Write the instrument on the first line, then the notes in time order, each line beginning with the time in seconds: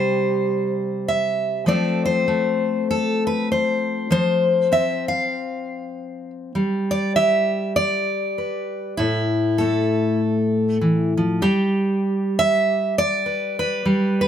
steel-string acoustic guitar
Already playing: C3 G3 G4 C5
1.08 E5
1.66 F3 A3 C4 A4 D5
2.06 C5
2.28 A3
2.91 A4
3.27 B4
3.52 C5
4.11 F3 C5
4.72 C4 E5
5.08 F5
6.55 G3
6.91 D5
7.16 G4 E5
7.76 D5
8.38 B4
8.97 A2 E4
9.58 A3 A4
10.81 E3
11.17 F3
11.42 G3 G4
12.39 E5
12.98 D5
13.26 B4
13.59 B4
13.85 G3
14.21 B4